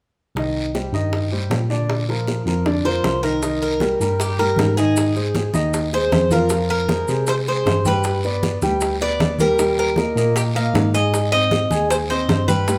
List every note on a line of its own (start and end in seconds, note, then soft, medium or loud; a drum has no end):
0.35 0.89 C2 medium
0.35 0.67 D#3 medium
0.35 0.67 D#4 medium
0.35 0.68 D#5 medium
0.35 high bongo medium
0.35 long guiro medium
0.74 0.90 G3 soft
0.74 0.90 G4 medium
0.74 0.90 C5 soft
0.74 high bongo soft
0.74 short guiro medium
0.92 1.46 G2 medium
0.92 1.25 D#3 medium
0.92 1.25 D#4 medium
0.92 1.25 D#5 medium
0.92 short guiro medium
1.13 high bongo medium
1.13 long guiro medium
1.32 1.63 G3 medium
1.32 1.63 G4 medium
1.32 1.63 C5 medium
1.50 2.40 A#2 medium
1.50 high bongo medium
1.50 low bongo medium
1.50 short guiro medium
1.70 2.01 D3 medium
1.70 2.02 D4 medium
1.70 2.02 D5 medium
1.70 short guiro medium
1.90 high bongo medium
1.90 long guiro medium
2.09 2.40 F3 medium
2.09 2.40 F4 medium
2.09 2.41 A#4 medium
2.09 high bongo soft
2.27 high bongo medium
2.27 short guiro medium
2.45 3.00 F2 medium
2.45 2.63 F3 medium
2.45 2.63 F4 medium
2.45 2.63 A#4 medium
2.45 high bongo soft
2.45 short guiro medium
2.65 2.81 D3 medium
2.65 2.82 D4 medium
2.65 2.82 D5 medium
2.65 high bongo medium
2.65 long guiro medium
2.84 3.16 F3 medium
2.84 3.16 F4 medium
2.84 3.16 A#4 medium
2.84 3.23 C5 medium
2.84 high bongo soft
3.03 3.94 C2 medium
3.03 high bongo medium
3.03 low bongo medium
3.03 short guiro medium
3.23 3.39 D#3 medium
3.23 3.39 D#4 medium
3.23 3.61 A#4 medium
3.23 3.40 D#5 medium
3.23 short guiro medium
3.42 3.74 D#3 medium
3.42 3.74 D#4 medium
3.42 3.75 D#5 medium
3.42 high bongo medium
3.42 high conga soft
3.42 long guiro medium
3.42 maracas medium
3.61 4.20 A#4 medium
3.61 high conga soft
3.61 maracas soft
3.80 3.97 G3 medium
3.80 3.97 G4 medium
3.80 3.97 A#4 medium
3.80 high bongo medium
3.80 high conga medium
3.80 short guiro medium
3.80 maracas soft
4.00 4.54 G2 medium
4.00 4.32 G3 medium
4.00 4.32 G4 medium
4.00 4.33 A#4 medium
4.00 high conga soft
4.00 short guiro medium
4.00 maracas medium
4.19 4.39 G4 medium
4.19 high bongo medium
4.19 high conga soft
4.19 long guiro medium
4.19 maracas medium
4.37 4.71 G3 medium
4.37 4.71 G4 medium
4.37 4.77 A#4 medium
4.37 4.71 A#4 medium
4.37 high conga soft
4.37 maracas soft
4.56 5.48 G#2 medium
4.56 high bongo medium
4.56 low bongo medium
4.56 high conga medium
4.56 short guiro medium
4.56 maracas soft
4.77 5.09 D#3 medium
4.77 5.09 D#4 medium
4.77 5.93 G#4 medium
4.77 5.09 D#5 medium
4.77 short guiro medium
4.77 maracas medium
4.96 high bongo medium
4.96 high conga soft
4.96 long guiro medium
4.96 maracas medium
5.15 5.47 G#3 medium
5.15 5.48 G#4 medium
5.15 5.48 C5 medium
5.15 high bongo soft
5.15 high conga soft
5.15 maracas soft
5.35 high bongo medium
5.35 high conga medium
5.35 short guiro medium
5.35 maracas soft
5.54 6.08 D#2 medium
5.54 5.86 D#3 medium
5.54 5.86 D#4 medium
5.54 5.86 D#5 medium
5.54 high bongo soft
5.54 high conga medium
5.54 short guiro medium
5.54 maracas medium
5.73 high bongo medium
5.73 high conga soft
5.73 long guiro medium
5.73 maracas medium
5.92 6.25 G#3 medium
5.92 6.25 G#4 medium
5.92 6.25 C5 medium
5.92 6.32 C5 medium
5.92 high bongo soft
5.92 high conga soft
5.92 maracas soft
6.12 7.03 F2 medium
6.12 high bongo medium
6.12 low bongo medium
6.12 high conga medium
6.12 short guiro medium
6.12 maracas soft
6.31 6.47 F3 medium
6.31 6.47 F4 medium
6.31 6.69 A#4 medium
6.31 6.47 F5 medium
6.31 high conga medium
6.31 short guiro medium
6.31 maracas medium
6.49 6.82 F3 medium
6.49 6.82 F4 medium
6.49 6.82 F5 medium
6.49 high bongo medium
6.49 high conga soft
6.49 long guiro medium
6.49 maracas medium
6.69 7.24 A#4 medium
6.69 high conga soft
6.69 maracas soft
6.88 7.04 G#3 medium
6.88 7.05 G#4 medium
6.88 7.05 C5 medium
6.88 high bongo medium
6.88 high conga medium
6.88 short guiro medium
6.88 maracas soft
7.08 7.62 C3 medium
7.08 7.40 G#3 medium
7.08 7.40 G#4 medium
7.08 7.40 C5 medium
7.08 high conga soft
7.08 short guiro medium
7.08 maracas medium
7.27 7.34 C5 medium
7.27 high bongo medium
7.27 high conga soft
7.27 long guiro medium
7.27 maracas medium
7.47 7.79 G#3 medium
7.47 7.79 G#4 medium
7.47 7.79 C5 medium
7.47 7.87 C5 medium
7.47 high conga soft
7.47 maracas soft
7.66 8.56 G2 medium
7.66 high bongo medium
7.66 low bongo medium
7.66 high conga medium
7.66 short guiro medium
7.66 maracas soft
7.85 8.17 G3 medium
7.85 8.17 G4 medium
7.85 8.98 B4 medium
7.85 8.17 G5 medium
7.85 high conga medium
7.85 short guiro medium
7.85 maracas medium
8.04 high bongo medium
8.04 high conga soft
8.04 long guiro medium
8.04 maracas medium
8.23 8.56 B3 medium
8.23 8.56 B4 medium
8.23 8.56 D5 medium
8.23 high bongo soft
8.23 high conga soft
8.23 maracas soft
8.43 high bongo medium
8.43 high conga medium
8.43 short guiro medium
8.43 maracas soft
8.62 9.16 D2 medium
8.62 8.94 G3 medium
8.62 8.94 G4 medium
8.62 8.95 G5 medium
8.62 high bongo soft
8.62 high conga medium
8.62 short guiro medium
8.62 maracas medium
8.81 high bongo medium
8.81 high conga soft
8.81 long guiro medium
8.81 maracas medium
9.00 9.33 B3 medium
9.00 9.33 B4 medium
9.00 9.33 D5 medium
9.00 9.37 D5 medium
9.00 high bongo soft
9.00 high conga soft
9.00 maracas soft
9.20 10.11 D#2 medium
9.20 high bongo medium
9.20 low bongo medium
9.20 high conga medium
9.20 short guiro medium
9.20 maracas soft
9.39 9.56 G3 medium
9.39 9.56 G4 medium
9.39 9.76 A#4 medium
9.39 9.56 G5 medium
9.39 high conga medium
9.39 short guiro medium
9.39 maracas medium
9.58 9.91 G3 medium
9.58 9.91 G4 medium
9.58 9.91 G5 medium
9.58 high bongo medium
9.58 high conga soft
9.58 long guiro medium
9.58 maracas medium
9.77 10.36 A#4 medium
9.77 high conga soft
9.77 maracas soft
9.96 10.13 A#3 medium
9.96 10.13 A#4 medium
9.96 10.14 D#5 medium
9.96 high bongo medium
9.96 high conga medium
9.96 short guiro medium
9.96 maracas soft
10.16 10.70 A#2 medium
10.16 10.48 A#3 medium
10.16 10.49 A#4 medium
10.16 10.49 D#5 medium
10.16 high conga soft
10.16 short guiro medium
10.16 maracas medium
10.35 10.42 G4 medium
10.35 high bongo medium
10.35 high conga soft
10.35 long guiro medium
10.35 maracas medium
10.55 10.87 A#3 medium
10.55 10.87 A#4 medium
10.55 10.87 D#5 medium
10.55 10.94 F5 medium
10.55 high conga soft
10.55 maracas soft
10.74 11.65 G#2 medium
10.74 high bongo medium
10.74 low bongo medium
10.74 high conga medium
10.74 short guiro medium
10.74 maracas soft
10.94 11.25 G#3 medium
10.94 11.26 G#4 medium
10.94 11.31 D#5 medium
10.94 11.26 G#5 medium
10.94 short guiro medium
10.94 maracas medium
11.13 high bongo medium
11.13 high conga soft
11.13 long guiro medium
11.13 maracas medium
11.32 11.64 C4 medium
11.32 11.64 C5 medium
11.32 11.90 D#5 medium
11.32 11.64 D#5 medium
11.32 high bongo soft
11.32 high conga soft
11.32 maracas soft
11.51 high bongo soft
11.51 high conga medium
11.51 short guiro medium
11.51 maracas soft
11.70 12.25 D#2 medium
11.70 12.02 G#3 medium
11.70 12.03 G#4 medium
11.70 12.03 G#5 medium
11.70 high bongo soft
11.70 high conga medium
11.70 short guiro medium
11.70 maracas medium
11.90 11.96 C5 medium
11.90 high bongo medium
11.90 high conga soft
11.90 long guiro medium
11.90 maracas medium
12.10 12.41 C4 medium
12.10 12.41 C5 medium
12.10 12.48 C5 medium
12.10 12.42 D#5 medium
12.10 high bongo soft
12.10 high conga soft
12.10 maracas soft
12.29 12.78 G2 medium
12.29 high bongo medium
12.29 low bongo medium
12.29 high conga medium
12.29 short guiro medium
12.29 maracas soft
12.48 12.64 G3 medium
12.48 12.64 G4 medium
12.48 12.78 B4 medium
12.48 12.64 G5 medium
12.48 high conga medium
12.48 short guiro medium
12.48 maracas medium
12.67 12.78 G3 medium
12.67 12.78 G4 medium
12.67 12.78 G5 medium
12.67 high bongo medium
12.67 long guiro medium
12.67 maracas medium